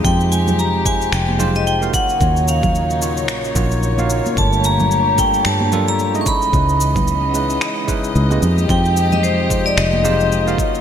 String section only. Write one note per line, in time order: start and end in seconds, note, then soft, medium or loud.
0.00 1.92 C3 medium
0.00 1.92 F3 medium
0.00 1.90 G#3 medium
0.00 1.92 G4 medium
1.94 6.22 A#2 medium
1.94 4.35 C#3 medium
1.94 4.35 F#3 medium
1.94 4.35 D#4 medium
1.94 6.22 C#5 medium
4.37 6.24 D3 medium
4.37 6.24 G3 medium
4.37 6.24 G4 medium
6.27 8.41 C#3 medium
6.27 8.40 E3 medium
6.27 10.55 G#3 medium
6.27 8.40 B3 medium
6.27 10.81 D#5 medium
8.43 10.57 C3 medium
8.43 10.57 F3 medium
8.43 10.57 G4 medium
10.58 10.81 C#3 medium
10.58 10.81 F#3 medium
10.58 10.81 A#3 medium
10.58 10.81 C#5 medium